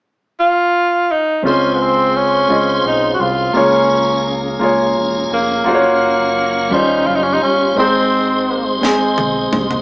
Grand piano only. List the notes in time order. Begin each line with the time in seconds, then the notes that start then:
1.42 C#3 G#3 C4 F4
1.47 C5
2.48 G#3 C#4 F4 D#5
3.53 C#3 A#3 F4 G#4 C#5
4.59 A#3 F4 G#4
4.64 C#5
5.64 A#3 F4 F#4
5.68 C5
5.75 C#5
6.70 D#3 G3 C#4 F4 C5
7.75 G#2 G#3 C4 D#4
7.79 C5
8.81 G#3 C4 D#4 G#4